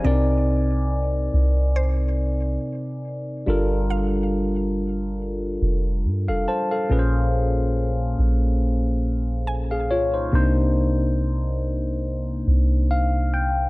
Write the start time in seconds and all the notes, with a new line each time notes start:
Already playing: C5 G#5
0.03 C2 C3 C4 D4 A#4 D5
0.12 D#4
1.34 C2
1.76 C5
3.46 G1 G3 D4 F4 A4 A#4
3.90 F5
5.62 F1
6.05 G2
6.28 F1 A4 F5
6.48 C5 A5
6.71 A4 F5
6.89 A#1 A#2 A#3 C#4 G#4 B4
6.99 C5
8.19 A#1
9.47 G#5
9.71 G#4 F5
9.91 C2 F4 C#5
10.14 D#4 C5
10.32 C2 C3 A#3 D4 D#4 C5
12.48 C2
12.91 F5
13.34 G5